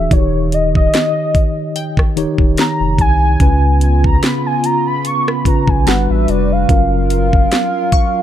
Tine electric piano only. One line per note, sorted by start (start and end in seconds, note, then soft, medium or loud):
0.00 0.13 E3 medium
0.00 0.13 D4 medium
0.00 0.12 F#4 medium
0.00 0.13 G#4 medium
0.10 1.46 D#3 medium
0.10 1.47 D#4 medium
0.10 0.19 F#4 medium
0.10 1.47 C#5 medium
0.18 1.50 G4 medium
2.16 3.19 D#3 medium
2.16 3.19 D#4 medium
2.16 3.20 G4 medium
2.16 3.20 C#5 loud
3.40 4.75 C#3 medium
3.40 4.76 C#4 medium
3.40 3.48 E4 medium
3.40 4.76 B4 medium
3.48 4.79 F4 medium
5.45 5.87 C#3 medium
5.45 5.87 C#4 medium
5.45 5.87 F4 medium
5.45 5.87 B4 medium
5.86 6.55 G3 medium
5.86 6.55 D4 medium
5.86 6.56 F#4 medium
5.86 6.56 B4 medium
6.68 8.04 F#3 medium
6.68 8.04 C#4 medium
6.68 8.05 F4 medium
6.68 8.05 A#4 medium